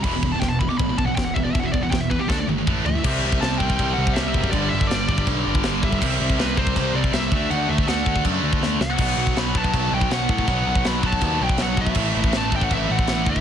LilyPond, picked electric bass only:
\new Staff \with { instrumentName = "Picked electric bass" } { \clef bass \time 4/4 \key c \lydian \tempo 4 = 161 e,,8 e,,8 e,,4 a,,8 b,,8 e,,8 e,,8 | e,,8 e,,8 e,4 d,8 g,,8 a,,8 d,8 | c,8 c,8 c,8 c,8 c,8 c,8 c,8 fis,,8 | g,,8 g,,8 g,,8 g,,8 b,,8 g,,8 g,,8 g,,8 |
c,8 c,8 c,8 c,8 c,8 c,8 c,8 d,8 | d,8 d,8 d,8 d,8 fis,8 d,8 d,8 c,8 | b,,8 b,,8 b,,8 b,,8 b,,8 b,,8 b,,8 a,8 | b,,8 b,,8 b,,8 b,,8 dis,8 b,,8 b,,8 b,,8 |
a,,8 a,,8 a,,8 a,,8 a,,8 a,,8 a,,8 d,8 | }